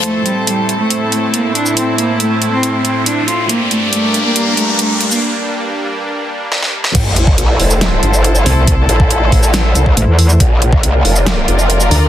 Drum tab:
CC |----------------|----------------|----------------|----------------|
HH |x-x-x-x-x-x-x-x-|x-x-x-x-x-x-x-x-|x-x-x-x-x-x-x-x-|----------------|
SH |---------------x|----------------|---------------x|----------------|
SD |----------------|----------------|----------------|------------oo-o|
BD |----------------|----------------|----------------|----------------|

CC |x---------------|----------------|----------------|
HH |x-x-x-o-x-x-x-o-|x-x-x-o-x-x-x-o-|x-x-x-o-x-x-x-o-|
SH |-------x---x-x--|-------xx-x----x|-------x---x-x--|
SD |--------o-------|--------o-------|--------o-------|
BD |o--o------------|o--o--o----o----|o--o------------|